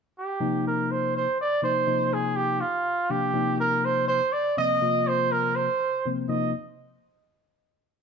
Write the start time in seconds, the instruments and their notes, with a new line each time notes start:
0.18 muted trumpet G4
0.40 tine electric piano C3 F3 A#3 D#4
0.67 muted trumpet A#4
0.91 muted trumpet C5
1.16 muted trumpet C5
1.41 muted trumpet D5
1.62 tine electric piano C3 F3 A#3 D#4, muted trumpet C5
1.87 tine electric piano C3 F3 A#3 D#4
2.13 muted trumpet G#4
2.36 muted trumpet G4
2.60 muted trumpet F4
3.09 tine electric piano C3 F3 A#3 D4, muted trumpet G4
3.34 tine electric piano C3 F3 A#3 D#4
3.60 muted trumpet A#4
3.85 muted trumpet C5
4.08 muted trumpet C5
4.33 muted trumpet D5
4.57 tine electric piano C3 F3 A#3 C4, muted trumpet D#5
4.81 tine electric piano C3 F3 A#3 F4
5.07 muted trumpet C5
5.32 muted trumpet A#4
5.55 muted trumpet C5
6.05 tine electric piano C3 F3 A#3 C4
6.29 tine electric piano C3 F3 A#3 D#4, muted trumpet D#5